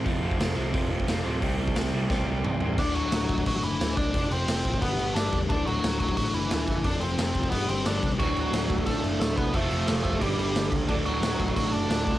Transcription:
0.05 picked electric bass F1, overdriven electric guitar F2 C3 F3, kick, open hi-hat
0.23 picked electric bass F1, overdriven electric guitar F2 C3 F3
0.31 kick
0.38 picked electric bass F1, overdriven electric guitar F2 C3 F3, snare, open hi-hat
0.56 picked electric bass C2, overdriven electric guitar F2 C3 F3
0.73 picked electric bass F1, overdriven electric guitar F2 C3 F3, kick, open hi-hat
0.90 picked electric bass F1, overdriven electric guitar F2 C3 F3
1.00 kick
1.07 picked electric bass F1, overdriven electric guitar F2 C3 F3, snare, open hi-hat
1.24 picked electric bass D1, overdriven electric guitar F2 C3 F3
1.41 picked electric bass C2, overdriven electric guitar C3 G3 C4, kick, open hi-hat
1.58 picked electric bass C2, overdriven electric guitar C3 G3 C4
1.68 kick
1.75 picked electric bass C2, overdriven electric guitar C3 G3 C4, snare, open hi-hat
1.93 picked electric bass C2, overdriven electric guitar C3 G3 C4
2.10 picked electric bass C2, overdriven electric guitar C3 G3 C4, kick, snare
2.27 picked electric bass C2, overdriven electric guitar C3 G3 C4
2.44 picked electric bass C2, overdriven electric guitar C3 G3 C4, mid tom
2.60 picked electric bass A1, overdriven electric guitar C3 G3 C4, floor tom
2.78 picked electric bass D1, overdriven electric guitar D2 A2 D3, lead electric guitar D4 D5, kick, crash
2.95 picked electric bass D1, lead electric guitar F#3 F#4, crash
3.12 picked electric bass D1, snare, crash
3.29 picked electric bass D1, kick, crash
3.38 kick
3.46 picked electric bass A1, lead electric guitar F#3 F#4, kick, crash
3.63 picked electric bass F#1, lead electric guitar E3 E4, crash
3.80 picked electric bass D1, snare, crash
3.97 picked electric bass C2, lead electric guitar D4 D5, kick, crash
4.13 picked electric bass F1, overdriven electric guitar F2 C3 F3, kick, crash
4.31 picked electric bass F1, lead electric guitar C4 C5, crash
4.48 picked electric bass F1, snare, crash
4.65 picked electric bass A1, kick, crash
4.74 kick
4.82 picked electric bass G1, overdriven electric guitar G2 D3 G3, lead electric guitar B3 B4, kick, crash
4.98 picked electric bass G1, crash
5.14 picked electric bass G1, lead electric guitar D4 D5, snare, crash
5.33 picked electric bass E1, kick, crash
5.48 picked electric bass D1, overdriven electric guitar D2 A2 D3, lead electric guitar D4 D5, kick, crash
5.66 picked electric bass D1, lead electric guitar F#3 F#4, crash
5.84 picked electric bass D1, snare, crash
5.99 picked electric bass D1, lead electric guitar F#3 F#4, kick, crash
6.09 kick
6.17 picked electric bass A1, lead electric guitar F#3 F#4, kick, crash
6.34 picked electric bass F#1, lead electric guitar E3 E4, crash
6.50 picked electric bass D1, snare, crash
6.67 picked electric bass F#1, kick, crash
6.84 picked electric bass F1, overdriven electric guitar F2 C3 F3, lead electric guitar D4 D5, kick, crash
7.00 picked electric bass F1, lead electric guitar C4 C5, crash
7.18 picked electric bass F1, snare, crash
7.35 picked electric bass F1, kick, crash
7.44 kick
7.50 picked electric bass G1, overdriven electric guitar G2 D3, lead electric guitar B3 B4, kick, crash
7.55 overdriven electric guitar G3
7.69 picked electric bass G1, lead electric guitar C4 C5, crash
7.85 picked electric bass G1, lead electric guitar D4 D5, snare, crash
8.03 picked electric bass C2, kick, crash
8.19 picked electric bass D1, overdriven electric guitar D2 A2 D3, lead electric guitar F#3 F#4, kick, crash
8.35 picked electric bass D1, crash
8.53 picked electric bass D1, snare, crash
8.70 picked electric bass D1, kick, crash
8.78 kick
8.86 picked electric bass A1, lead electric guitar A3 A4, kick, crash
9.04 picked electric bass F#1, crash
9.20 picked electric bass D1, lead electric guitar A3 A4, snare, crash
9.37 picked electric bass C2, lead electric guitar B3 B4, kick, crash
9.53 picked electric bass F1, overdriven electric guitar F2 C3 F3, lead electric guitar A3 A4, kick, crash
9.71 picked electric bass F1, crash
9.87 picked electric bass F1, lead electric guitar A3 A4, snare, crash
10.04 picked electric bass F1, lead electric guitar A3 A4, kick, crash
10.13 kick
10.20 picked electric bass G1, overdriven electric guitar G2 D3 G3, lead electric guitar G3 G4, kick, crash
10.38 picked electric bass G1, crash
10.54 picked electric bass G1, snare, crash
10.72 picked electric bass C#2, kick, crash
10.88 picked electric bass D1, overdriven electric guitar D2 A2 D3, lead electric guitar D4 D5, kick, crash
11.06 picked electric bass D1, lead electric guitar F#3 F#4, crash
11.22 picked electric bass D1, snare, crash
11.40 picked electric bass D1, kick, crash
11.48 kick
11.56 picked electric bass A1, lead electric guitar F#3 F#4, kick, crash
11.72 picked electric bass F#1, lead electric guitar D4 D5, crash
11.90 picked electric bass D1, snare, crash
12.07 picked electric bass C2, kick, crash

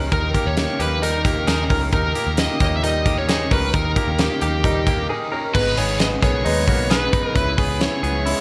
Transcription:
Already playing: overdriven electric guitar D#3 A#3 D#4 G4 A#4, clean electric guitar C#4, upright piano D#4 G4 A#4
0.11 picked electric bass D#2, overdriven electric guitar D#3 A#3 D#4 G4 A#4, upright piano D#4 G4 A#4, lead electric guitar A#4, kick, closed hi-hat
0.33 clean electric guitar A#3 G4, upright piano D#4 G4 A#4, kick, closed hi-hat
0.46 picked electric bass D#2, lead electric guitar C#5
0.56 upright piano D#4 G4 A#4, snare, closed hi-hat
0.79 picked electric bass D#2, overdriven electric guitar A#3 D#4 G4 A#4, upright piano D#4 G4 A#4, lead electric guitar B4, closed hi-hat
1.01 clean electric guitar G3 D#4, upright piano D#4 G4 A#4, lead electric guitar A#4, closed hi-hat
1.24 overdriven electric guitar A#3 D#4 G4 A#4, upright piano D#4 G4 A#4, kick, closed hi-hat
1.35 overdriven electric guitar D#4 G4 A#4
1.46 picked electric bass D#2, overdriven electric guitar A#3 D#4 G4 A#4, upright piano D#4 G4 A#4, clean electric guitar G#4, lead electric guitar A#4, snare, closed hi-hat
1.69 picked electric bass C#2, overdriven electric guitar A#3 D#4 G4 A#4, clean electric guitar C#4, upright piano D#4 G4 A#4, kick, open hi-hat
1.92 picked electric bass D#2, overdriven electric guitar D#3 A#3 D#4 G4 A#4, upright piano D#4 G4 A#4, lead electric guitar A#4, kick, closed hi-hat
2.14 clean electric guitar A#3 G4, upright piano D#4 G4 A#4, closed hi-hat
2.27 picked electric bass D#2
2.37 upright piano D#4 G4 A#4, lead electric guitar D#5, snare, closed hi-hat
2.60 picked electric bass D#2, overdriven electric guitar A#3 D#4 G4 A#4, upright piano D#4 G4 C#5, lead electric guitar D#5, kick, closed hi-hat
2.77 lead electric guitar E5
2.82 clean electric guitar G3 D#4, upright piano D#4 G4 A#4, lead electric guitar D#5, closed hi-hat
3.05 overdriven electric guitar A#3 D#4 G4 A#4, upright piano D#4 G4 A#4, kick, closed hi-hat
3.16 overdriven electric guitar D#4 G4 A#4, lead electric guitar C#5
3.27 overdriven electric guitar A#3 D#4 G4 A#4, upright piano D#4 G4 A#4, clean electric guitar G#4, snare, closed hi-hat
3.50 picked electric bass C#2, overdriven electric guitar A#3 D#4 G4 A#4, clean electric guitar C#4, upright piano D#4 G4 A#4, lead electric guitar B4, kick, open hi-hat
3.73 picked electric bass D#2, overdriven electric guitar D#3 A#3 D#4 G4 A#4, upright piano D#4 G4 A#4, lead electric guitar A#4, kick, closed hi-hat
3.96 clean electric guitar A#3 G4, upright piano D#4 G4 A#4, kick, closed hi-hat
4.08 picked electric bass D#2
4.19 upright piano D#4 G4 A#4, lead electric guitar G4, snare, closed hi-hat
4.41 picked electric bass D#2, overdriven electric guitar A#3 D#4 G4 A#4, upright piano D#4 G4 A#4, lead electric guitar G4, closed hi-hat
4.64 clean electric guitar G3 D#4, upright piano D#4 G4 A#4, kick, closed hi-hat
4.86 overdriven electric guitar A#3 D#4 G4 A#4, upright piano D#4 G4 A#4, kick, closed hi-hat
4.97 overdriven electric guitar D#4 G4 A#4
5.09 overdriven electric guitar A#3 D#4 G4 A#4, upright piano D#4 G4 A#4, clean electric guitar G#4
5.31 overdriven electric guitar A#3 D#4 G4 A#4, clean electric guitar C#4, upright piano D#4 G4 A#4
5.54 picked electric bass G#1, overdriven electric guitar G#2 D#3 G#3 B3 D#4 B4, upright piano B3 D#4 G#4 B4, lead electric guitar B4, kick, crash
5.65 overdriven electric guitar G#3 B3 D#4 B4
5.77 picked electric bass G#1, upright piano B3 D#4 G#4 B4, clean electric guitar B3 G#4, lead electric guitar C#5, hi-hat pedal, open hi-hat
5.99 upright piano B3 D#4 G#4 B4, lead electric guitar D#5, snare, hi-hat pedal, open hi-hat
6.21 picked electric bass B1, overdriven electric guitar G#3 B3 D#4 B4, upright piano B3 D#4 G#4 A#4, clean electric guitar G#4, lead electric guitar C#5, kick, hi-hat pedal, open hi-hat
6.45 picked electric bass D#2, clean electric guitar G#3 D#4, upright piano B3 D#4 G#4 B4, hi-hat pedal, open hi-hat
6.67 picked electric bass B1, overdriven electric guitar G#3 B3 D#4 B4, clean electric guitar A#3 F#4, upright piano B3 D#4 G#4 B4, kick, hi-hat pedal, open hi-hat
6.89 overdriven electric guitar G#3 B3 D#4 B4, upright piano B3 D#4 G#4 B4, clean electric guitar G#4, lead electric guitar B4, snare, hi-hat pedal, open hi-hat
7.12 overdriven electric guitar G#3 B3 D#4 B4, upright piano B3 D#4 G#4 B4, kick, hi-hat pedal, open hi-hat
7.35 picked electric bass C#2, overdriven electric guitar C#3 G#3 B3 E4 B4, upright piano C#4 E4 G#4 B4, lead electric guitar B4, kick, hi-hat pedal, open hi-hat
7.46 overdriven electric guitar B3 E4 B4
7.57 picked electric bass C#2, clean electric guitar B3 G#4, upright piano C#4 E4 G#4 C#5, kick, hi-hat pedal, open hi-hat
7.79 upright piano C#4 E4 G#4 C#5, lead electric guitar C#5, snare, hi-hat pedal, open hi-hat
8.03 picked electric bass C#2, overdriven electric guitar G#3 B3 E4 B4, upright piano C#4 E4 G#4 B4, clean electric guitar G#4, hi-hat pedal, open hi-hat
8.26 clean electric guitar G#3 E4, upright piano C#4 E4 G#4 C#5, hi-hat pedal, open hi-hat

